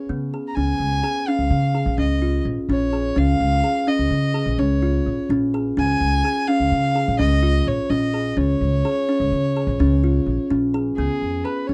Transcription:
0.09 upright bass C#3, kalimba B3
0.34 kalimba G#4
0.48 violin A#5
0.55 upright bass C#2, kalimba C#4, violin G#5
0.79 upright bass C#2
1.04 kalimba G#4
1.27 kalimba C#4, violin F5
1.39 upright bass C#2
1.50 upright bass C#3
1.75 kalimba G#4
1.86 upright bass A#1
1.98 upright bass C#2, kalimba C#4, violin D#5
2.22 kalimba F4
2.45 upright bass A#1
2.69 upright bass A#1, kalimba C#4, violin C#5
2.93 kalimba G#4
3.16 upright bass C#2, kalimba C#4, violin F5
3.40 upright bass C#2
3.64 kalimba G#4
3.87 kalimba C#4, violin D#5
3.99 upright bass C#2
4.10 upright bass C#3
4.34 kalimba G#4
4.46 upright bass A#1
4.58 upright bass C#2, kalimba C#4, violin C#5
4.82 kalimba F4
5.06 upright bass A#1
5.29 upright bass A#1, kalimba C#4
5.54 kalimba G#4
5.77 upright bass C#2, kalimba C#4, violin G#5
6.00 upright bass C#2
6.25 kalimba G#4
6.48 kalimba C#4, violin F5
6.60 upright bass C#2
6.72 upright bass C#3
6.96 kalimba G#4
7.08 upright bass A#1
7.19 upright bass C#2, kalimba C#4, violin D#5
7.43 kalimba F4
7.67 upright bass A#1, violin C#5
7.90 upright bass A#1, kalimba C#4, violin D#5
8.14 kalimba G#4
8.37 upright bass C#2, kalimba C#4, violin C#5
8.61 upright bass C#2
8.85 kalimba G#4
9.09 kalimba C#4
9.20 upright bass C#2
9.32 upright bass C#3
9.56 kalimba G#4
9.67 upright bass A#1
9.79 upright bass C#2, kalimba C#4
10.04 kalimba F4
10.26 upright bass A#1
10.50 upright bass A#1, kalimba C#4
10.74 kalimba G#4
10.96 upright bass C#2, kalimba B3, violin G#4
11.21 upright bass F2
11.44 kalimba G#4, violin B4
11.67 upright bass C#2, kalimba C#4, violin C#5

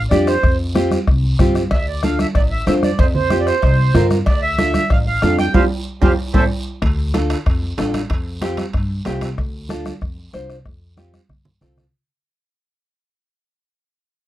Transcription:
0.10 upright bass F2, nylon-string guitar D4 F4 G4, accordion D5, bombo rim, high conga, short guiro
0.27 accordion C5, bombo rim, short guiro
0.43 upright bass F2, bombo low, bombo rim, high conga, long guiro
0.75 nylon-string guitar C4 F4 G4, bombo rim, high conga, short guiro
0.91 bombo rim, high conga, short guiro
1.07 upright bass C2, bombo low, bombo rim, long guiro
1.23 high conga
1.39 upright bass G2, nylon-string guitar C4 F4 G4, bombo low, bombo rim, high conga, low conga, short guiro
1.55 bombo rim, high conga, short guiro
1.71 upright bass D2, accordion E5, bombo low, bombo rim, cowbell, high conga, long guiro
1.87 accordion D5
2.03 nylon-string guitar D4 F4 A4, accordion F5, bombo rim, high conga, short guiro
2.19 accordion E5, bombo rim, high conga, short guiro
2.35 upright bass A1, accordion D5, bombo low, bombo rim, cowbell, long guiro
2.51 accordion E5, high conga
2.66 upright bass F2, nylon-string guitar D4 F4 C5, accordion E5, bombo rim, high conga, low timbale, short guiro
2.83 accordion D5, bombo rim, high conga, short guiro
2.99 upright bass F2, accordion C5, bombo low, bombo rim, cowbell, long guiro
3.15 accordion C5, low conga
3.30 nylon-string guitar C4 F4 G4, bombo rim, high conga, short guiro
3.40 accordion D5
3.46 accordion C5, bombo rim, short guiro
3.62 upright bass C2, bombo low, bombo rim, cowbell, long guiro
3.79 high conga
3.94 upright bass G2, nylon-string guitar C4 F4 A#4, bombo rim, high conga, low conga, low timbale, short guiro
4.11 bombo rim, high conga, short guiro
4.26 upright bass D2, accordion D5, bombo low, bombo rim, cowbell, high conga, long guiro
4.42 accordion E5
4.58 nylon-string guitar D4 F4 A4, bombo rim, high conga, short guiro
4.74 bombo rim, high conga, short guiro
4.90 upright bass A1, accordion F5, bombo low, bombo rim, cowbell, long guiro
5.06 accordion F5, high conga
5.22 upright bass F2, nylon-string guitar D4 F4 A4, bombo rim, high conga, low timbale, short guiro
5.39 accordion G5, bombo rim, high conga, short guiro
5.54 upright bass F2, nylon-string guitar C4 F4 G4, accordion G4 C5 F5, bombo low, high conga, high timbale, long guiro
6.02 upright bass F2, nylon-string guitar C4 F4 G4, accordion G4 C5 F5, bombo low, high conga, high timbale, long guiro
6.34 upright bass A1, nylon-string guitar C4 E4 A4, accordion A4 C5 E5, bombo low, high conga, high timbale, long guiro
6.82 upright bass D2, bombo low, bombo rim, high conga, high timbale, long guiro
7.14 nylon-string guitar D4 F4 A4, bombo rim, high conga, high timbale, short guiro
7.30 bombo rim, high timbale, short guiro
7.46 upright bass F2, bombo low, bombo rim, high timbale, long guiro
7.62 high conga
7.77 upright bass A1, nylon-string guitar D4 F4 A4, bombo rim, high conga, high timbale, low timbale, short guiro
7.94 bombo rim, high conga, high timbale, short guiro
8.10 upright bass F2, bombo low, bombo rim, high conga, high timbale, long guiro
8.41 nylon-string guitar C4 F4 G4, bombo rim, high conga, high timbale, short guiro
8.57 bombo rim, high conga, high timbale, short guiro
8.73 upright bass G2, bombo low, bombo rim, high timbale, long guiro
8.90 high conga
9.05 upright bass C2, nylon-string guitar C4 F4 G4, bombo rim, high conga, high timbale, low timbale, short guiro
9.21 bombo rim, high conga, high timbale, short guiro
9.38 upright bass D2, bombo low, bombo rim, high conga, long guiro
9.69 nylon-string guitar D4 F4 A4, bombo rim, high conga, short guiro
9.85 bombo rim, high conga, short guiro
10.01 upright bass F2, bombo low, bombo rim, long guiro
10.18 high conga
10.33 upright bass C2, nylon-string guitar D4 F4 C5, bombo rim, high conga, short guiro
10.50 bombo rim, short guiro
10.65 upright bass F2, bombo low, bombo rim, long guiro
10.97 nylon-string guitar C4 F4 G4, bombo rim, high conga, short guiro
11.13 bombo rim, high conga, short guiro
11.29 upright bass G2, bombo low, bombo rim, low conga, long guiro
11.45 low conga
11.61 upright bass C2, nylon-string guitar C4 F4 A4, bombo rim, low conga, short guiro
11.77 bombo rim, low conga, short guiro

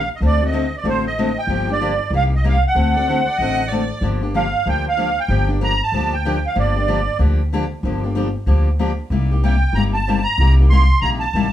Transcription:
0.16 accordion D#5
0.21 upright bass D2, steel-string acoustic guitar D3 A3 C4 F#4 A4
0.26 accordion D5
0.41 steel-string acoustic guitar C4 F#4 A4
0.46 accordion D#5
0.53 steel-string acoustic guitar D3 A3 C4 F#4 A4
0.77 accordion D5
0.84 upright bass A1, steel-string acoustic guitar D3 A3 C4 F#4 A4
0.89 accordion C5
1.07 accordion D#5
1.18 steel-string acoustic guitar D3 A3 C4 F#4 A4
1.38 accordion G5
1.47 upright bass G1, steel-string acoustic guitar D3 F3 A#3 D4 G4
1.68 steel-string acoustic guitar A#3 D4 G4, accordion D5
1.81 steel-string acoustic guitar D3 F3 A#3 D4 G4
2.10 upright bass C2, steel-string acoustic guitar C3 G3 A#3 D#4 G4
2.16 accordion F5
2.36 accordion D#5
2.44 steel-string acoustic guitar C3 G3 A#3 D#4 G4, accordion F5
2.67 accordion F#5
2.75 upright bass D2, steel-string acoustic guitar D3 A3 C4 F#4 A4
2.94 steel-string acoustic guitar A4, violin D5
2.99 steel-string acoustic guitar C4 F#4
3.08 steel-string acoustic guitar D3 A3 C4 F#4 A4, violin C5
3.27 violin D5
3.37 upright bass A1, steel-string acoustic guitar A3, violin D#5
3.41 steel-string acoustic guitar D3 C4 F#4 A4
3.68 steel-string acoustic guitar D3 A3 C4 F#4, violin D5
3.73 steel-string acoustic guitar A4
4.01 upright bass G1, steel-string acoustic guitar D3 F3 A#3 D4 G4
4.23 steel-string acoustic guitar A#3 D4 G4
4.34 steel-string acoustic guitar D3 F3 A#3 D4 G4, accordion F5
4.66 upright bass D2, steel-string acoustic guitar D3 F3 A#3 D4 G4, accordion G5
4.89 accordion F5
4.97 steel-string acoustic guitar D3 F3 A#3 D4 G4
5.20 accordion G5
5.28 upright bass G1, steel-string acoustic guitar D3 F3 A#3 D4 G4
5.49 steel-string acoustic guitar A#3 D4 G4
5.61 steel-string acoustic guitar D3 F3 A#3 D4 G4, accordion A#5
5.83 accordion A5
5.92 upright bass D2, steel-string acoustic guitar D3 F3 A#3 D4 G4
6.14 accordion G5
6.25 steel-string acoustic guitar D3 F3 A#3 D4 G4
6.46 accordion F5
6.55 upright bass G1, steel-string acoustic guitar D3 F3 A#3 D4 G4, accordion D5
6.76 steel-string acoustic guitar A#3 D4 G4
6.88 steel-string acoustic guitar D3 F3 A#3 D4 G4
7.19 upright bass D2, steel-string acoustic guitar D3 F3 A#3 D4 G4
7.53 steel-string acoustic guitar D3 F3 A#3 D4 G4
7.83 upright bass G1, steel-string acoustic guitar D3 F3 A#3 D4 G4
8.04 steel-string acoustic guitar A#3 D4 G4
8.15 steel-string acoustic guitar D3 F3 A#3 D4 G4
8.46 upright bass D2, steel-string acoustic guitar D3 F3 A#3 D4 G4
8.79 steel-string acoustic guitar D3 F3 A#3 D4 G4
9.10 upright bass C2, steel-string acoustic guitar C3 G3 A#3 D#4 G4
9.31 steel-string acoustic guitar A#3 D#4 G4
9.44 steel-string acoustic guitar C3 G3 A#3 D#4 G4, accordion G5
9.73 upright bass G1, steel-string acoustic guitar C3 G3 A#3 D#4, accordion A#5
9.77 steel-string acoustic guitar G4
9.94 accordion A5
10.08 steel-string acoustic guitar C3 G3 A#3 D#4 G4
10.23 accordion A#5
10.38 upright bass C2, steel-string acoustic guitar C3 G3 A#3 D#4 G4
10.60 steel-string acoustic guitar A#3 D#4 G4
10.70 steel-string acoustic guitar C3 G3 A#3 D#4 G4, accordion C6
11.01 upright bass A#1, steel-string acoustic guitar C3 G3 A#3 D#4 G4, accordion A#5
11.20 accordion A5
11.33 upright bass A1, steel-string acoustic guitar C3 G3 A#3 D#4 G4

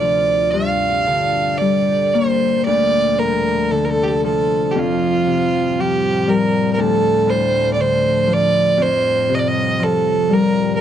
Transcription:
Already playing: ambient pad D2 C3 F4, harp D2 D3, fiddle D5
0.01 harp F3
0.51 harp G2, ambient pad A#2 G3 A4, fiddle F5
1.07 harp D3
1.58 harp G3, fiddle D5
2.14 harp A#3, fiddle C5
2.65 ambient pad D2 C3 F3, harp D2, fiddle D5
3.19 harp A2, fiddle A#4
3.71 harp D3, fiddle A4
3.85 fiddle A#4
3.90 fiddle A4
4.03 fiddle G4
4.08 fiddle A4
4.24 harp F3, fiddle A4
4.71 fiddle G4
4.75 harp F2, ambient pad A2 G3, fiddle F4
5.27 harp C3
5.79 harp F3, fiddle G4
6.28 harp G3, fiddle A#4
6.73 fiddle A#4
6.78 harp D2, ambient pad D2, fiddle A4
7.27 harp A2, fiddle C5
7.73 fiddle D5
7.78 harp D3, fiddle C5
8.27 harp F3
8.33 fiddle D5
8.78 harp F2, ambient pad F3 G3
8.82 fiddle C5
9.29 harp C3
9.35 fiddle D#5
9.39 fiddle D5
9.47 fiddle D#5
9.80 harp F3, fiddle A4
10.30 harp G3, fiddle A#4
10.75 fiddle A#4

